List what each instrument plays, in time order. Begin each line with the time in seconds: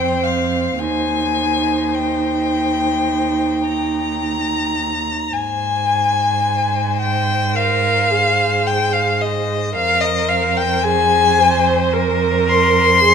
Already playing: cello F2, viola C4, violin C5 G5
0.23 violin F5
0.79 cello D#2, viola D#4, violin C5 G#5
1.94 violin G5
3.65 violin A#5
5.32 cello G#2, violin C5 G#5
7.00 violin G5
7.55 viola A#4, violin F5
8.11 viola G#4
8.67 violin G5
8.93 violin F5
9.21 violin D#5
9.74 cello F2, viola A#4, violin C5 F5
10.01 violin D#5
10.29 violin F5
10.57 violin G5
10.84 viola G#4, violin G#5
11.38 viola C5
11.93 viola A#4
12.49 violin C6
13.00 viola G#4